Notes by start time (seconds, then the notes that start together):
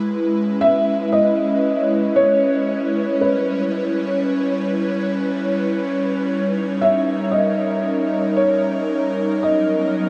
Already playing: G#3 E4 B4
0.17 C#4
0.61 E5
1.12 D#5
1.34 C#5
2.16 C#5
3.21 G3 B4
6.42 D#4
6.81 E5
7.03 A#4
7.31 D#5
8.36 C#5
9.43 F#3 D#5
9.67 B3